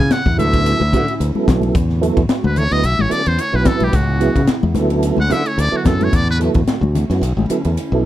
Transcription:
Already playing: analog synth pad C#3 B3 E4, muted trumpet G#5
0.10 tonewheel organ E4 G4, muted trumpet F#5, muted fingered electric bass stroke, snare, hi-hat pedal, ride
0.26 fingered electric bass E2, kick, high conga
0.37 fingered electric bass D2, analog synth pad D3 A3 C#4, tonewheel organ F#3 B3 E4 A4, muted trumpet E5, hi-hat pedal, ride, high conga, low conga
0.53 kick, ride
0.66 hi-hat pedal, ride
0.80 fingered electric bass D2, high conga
0.92 fingered electric bass D3, tonewheel organ F#3 B3 E4 F#4, kick, hi-hat pedal, ride
1.08 tonewheel organ E4 F#4, ride
1.20 fingered electric bass D2, hi-hat pedal, ride
1.35 tonewheel organ F#3 B3 E4 A4, muted fingered electric bass stroke, high conga
1.48 fingered electric bass B1, kick, snare, hi-hat pedal, ride, low conga
1.62 ride, high conga
1.74 fingered electric bass E2, analog synth pad F#4, kick, hi-hat pedal, ride
1.90 snare
2.01 tonewheel organ F#3 B3 E4 A4, hi-hat pedal, ride
2.17 fingered electric bass E2, kick, ride
2.29 tonewheel organ E4 B4, muted fingered electric bass stroke, snare, hi-hat pedal, ride
2.44 fingered electric bass D2, muted trumpet B4, high conga
2.56 tonewheel organ E4 A4, muted trumpet C#5, snare, hi-hat pedal, ride, low conga
2.70 fingered electric bass D2, tonewheel organ F#3 B3 E4 B4, muted trumpet D#5, snare, ride
2.83 fingered electric bass B1, analog synth pad C#4 E4, muted trumpet E5, hi-hat pedal, ride
2.99 fingered electric bass A1, muted trumpet C#5, high conga
3.09 tonewheel organ F#3 B3 E4 A4, muted trumpet D5, hi-hat pedal, ride
3.25 fingered electric bass E2, tonewheel organ E4 B4, muted trumpet C5, ride
3.38 muted trumpet C#5, hi-hat pedal, ride
3.53 fingered electric bass B1, tonewheel organ F#3 B3 E4 B4, muted trumpet B4
3.65 muted trumpet A4, kick, snare, hi-hat pedal, ride, low conga
3.80 fingered electric bass B1, muted trumpet G4, ride, high conga
3.93 fingered electric bass C#2, analog synth pad C#3 B3, muted trumpet F#4, kick, hi-hat pedal, ride
4.20 tonewheel organ F#3 B3 E4 G#4, snare, hi-hat pedal, ride
4.35 fingered electric bass C#3, kick, ride
4.47 tonewheel organ E4 G#4, muted fingered electric bass stroke, snare, hi-hat pedal, ride
4.63 fingered electric bass E2, high conga
4.74 fingered electric bass D2, analog synth pad D3 A3 C#4, tonewheel organ F#3 B3 E4 A4, snare, hi-hat pedal, ride, high conga, low conga
4.90 ride
5.03 hi-hat pedal, ride
5.17 fingered electric bass D2, muted trumpet F#5, high conga
5.30 fingered electric bass D3, tonewheel organ F#3 B3 E4 A4, muted trumpet E5, hi-hat pedal, ride
5.45 tonewheel organ E4 A4, muted trumpet C#5, ride
5.58 fingered electric bass D2, muted trumpet D5, hi-hat pedal, ride
5.71 tonewheel organ F#3 B3 E4 A4, muted fingered electric bass stroke
5.76 muted trumpet F#4
5.85 fingered electric bass F#2, muted trumpet A4, kick, snare, hi-hat pedal, ride, low conga
6.01 muted trumpet C#5, snare, ride, high conga
6.13 fingered electric bass E2, analog synth pad F#4, muted trumpet D5, kick, hi-hat pedal, ride
6.28 muted trumpet B4, snare
6.40 tonewheel organ F#3 B3 E4 A4, snare, hi-hat pedal, ride
6.54 fingered electric bass E2, kick, ride
6.67 tonewheel organ E4 A4, muted fingered electric bass stroke, snare, hi-hat pedal, ride
6.81 fingered electric bass D2, high conga
6.95 tonewheel organ E4 F#4, snare, hi-hat pedal, ride, high conga, low conga
7.10 fingered electric bass F#2, tonewheel organ F#3 B3 E4 F#4, snare, ride
7.21 fingered electric bass B1, analog synth pad C#4 E4, hi-hat pedal, ride
7.37 fingered electric bass A1, high conga
7.50 tonewheel organ F#3 B3 E4 A4, hi-hat pedal, ride
7.65 fingered electric bass E2, tonewheel organ E4 A4, ride
7.77 hi-hat pedal, ride
7.92 fingered electric bass B1, tonewheel organ F#3 B3 E4 A4

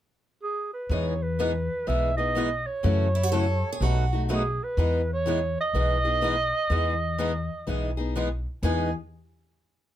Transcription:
0.43 clarinet G#4
0.74 clarinet B4
0.89 upright bass E2, steel-string acoustic guitar E3 G#3 B3 D#4 G#4, clarinet C#5
1.22 clarinet B4
1.39 steel-string acoustic guitar E3 G#3 B3 D#4 G#4
1.88 upright bass B1, steel-string acoustic guitar E3 G#3 B3 D#4 G#4, clarinet E5
2.17 steel-string acoustic guitar B3 D#4 G#4, clarinet D#5
2.37 steel-string acoustic guitar E3 G#3 B3 D#4 G#4
2.66 clarinet C#5
2.83 upright bass F#2, steel-string acoustic guitar C#3 E3 F#3 A3 C#4 E4 F#4 A4
3.15 steel-string acoustic guitar E4
3.23 steel-string acoustic guitar F#4
3.32 steel-string acoustic guitar C#3 E3 F#3 A3 C#4 E4 F#4 A4
3.73 steel-string acoustic guitar G#4
3.80 upright bass B1, steel-string acoustic guitar B2 F#3 A3 D#4 F#4 B4
4.13 steel-string acoustic guitar A3 D#4 F#4
4.29 steel-string acoustic guitar B2 F#3 A3 D#4 F#4 B4, clarinet G#4
4.63 clarinet B4
4.77 upright bass E2, steel-string acoustic guitar E3 G#3 B3 D#4 G#4
5.13 clarinet C#5
5.27 steel-string acoustic guitar E3 G#3 B3 D#4 G#4
5.61 clarinet D#5
5.74 upright bass B1, steel-string acoustic guitar E3 G#3 B3 D#4 G#4
6.05 steel-string acoustic guitar B3 D#4 G#4
6.23 steel-string acoustic guitar E3 G#3 B3 D#4 G#4
6.70 upright bass E2, steel-string acoustic guitar E3 G#3 B3 D#4 G#4
7.19 steel-string acoustic guitar E3 G#3 B3 D#4 G#4
7.67 upright bass B1, steel-string acoustic guitar E3 G#3 B3 D#4 G#4
7.97 steel-string acoustic guitar B3 D#4 G#4
8.16 steel-string acoustic guitar E3 G#3 B3 D#4 G#4
8.63 upright bass E2, steel-string acoustic guitar E3 G#3 B3 D#4 G#4, clarinet G#5

